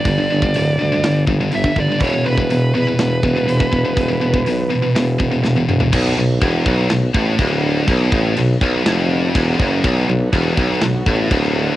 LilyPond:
<<
  \new Staff \with { instrumentName = "Lead electric guitar" } { \time 4/4 \key b \minor \tempo 4 = 123 d''2~ d''8 r8 e''8 d''8 | cis''8 b'4 b'2~ b'8~ | b'2. r4 | r1 |
r1 | r1 | }
  \new Staff \with { instrumentName = "Analog synth pad" } { \time 4/4 \key b \minor r1 | r1 | r1 | <d b fis'>1~ |
<d b fis'>1~ | <d b fis'>1 | }
  \new Staff \with { instrumentName = "Distorted electric guitar" } { \clef bass \time 4/4 \key b \minor <g, d>16 <g, d>16 <g, d>16 <g, d>16 <g, d>8 <g, d>16 <g, d>16 <g, d>8 <g, d>16 <g, d>16 <g, d>16 <g, d>16 <g, d>16 <g, d>16 | <e, b, e>16 <e, b,>16 <e, b,>16 <e, b,>16 <e, b,>8 <e, b,>16 <e, b,>16 <e, b,>8 <e, b,>16 <e, b,>16 <e, b,>16 <e, b,>16 <e, b,>16 <e, b,>16 | <e, b,>16 <e, b,>16 <e, b,>16 <e, b,>16 <e, b,>8 <e, b,>16 <e, b,>16 <e, b,>8 <e, b,>16 <e, b,>16 <e, b,>16 <e, b,>16 <e, b,>16 <e, b,>16 | b,,8 b,,8 e,8 b,,8 b,,8 a,8 d,4 |
b,,8 a,8 b,,8 b,,8 eis,4 e,8 fis,8 | b,,8 b,,8 e,8 b,,8 b,,8 a,8 d,4 | }
  \new Staff \with { instrumentName = "Distorted electric guitar" } { \clef bass \time 4/4 \key b \minor <g, d>16 <g, d>16 <g, d>16 <g, d>16 <g, d>8 <g, d>16 <g, d>16 <g, d>8 <g, d>16 <g, d>16 <g, d>16 <g, d>16 <g, d>16 <g, d>16 | <e, b, e>16 <e, b,>16 <e, b,>16 <e, b,>16 <e, b,>8 <e, b,>16 <e, b,>16 <e, b,>8 <e, b,>16 <e, b,>16 <e, b,>16 <e, b,>16 <e, b,>16 <e, b,>16 | <e, b,>16 <e, b,>16 <e, b,>16 <e, b,>16 <e, b,>8 <e, b,>16 <e, b,>16 <e, b,>8 <e, b,>16 <e, b,>16 <e, b,>16 <e, b,>16 <e, b,>16 <e, b,>16 | b,,8 b,,8 e,8 b,,8 b,,8 a,8 d,4 |
b,,8 a,8 b,,8 b,,8 eis,4 e,8 fis,8 | b,,8 b,,8 e,8 b,,8 b,,8 a,8 d,4 | }
  \new Staff \with { instrumentName = "Tuba" } { \clef bass \time 4/4 \key b \minor g,,8 g,,8 d,,8 d,8 g,,8 g,,8 g,,8 g,,8 | e,,8 e,,8 e,,8 e,8 e,,8 e,,8 e,,8 e,,8 | e,,8 e,,8 b,,8 r8 e,,8 e,,8 e,,8 e,,8 | b,,8 b,,8 e,,8 b,,8 b,,8 a,,8 d,,4 |
b,,8 a,,8 b,,8 b,,8 eis,,4 e,,8 fis,,8 | b,,8 b,,8 e,,8 b,,8 b,,8 a,,8 d,,4 | }
  \new DrumStaff \with { instrumentName = "Drums" } \drummode { \time 4/4 <hho bd>8. bd16 hho4 <hho sn>8 bd8 hho16 bd16 bd8 | <hho bd>8. bd16 hho4 <hho sn>8 bd8 hho16 bd16 bd8 | <hho bd>8. bd16 hho4 <hho sn>8 bd8 sn16 tommh16 toml16 tomfh16 | <cymc bd>4 <cymc bd>8 bd8 <cymc sn>8 bd8 <cymc bd>4 |
<cymc bd>8 bd8 cymc8 bd8 <cymc sn>4 <cymc bd>8 bd8 | <cymc bd>4 <cymc bd>8 bd8 <cymc sn>8 bd8 <cymc bd>4 | }
>>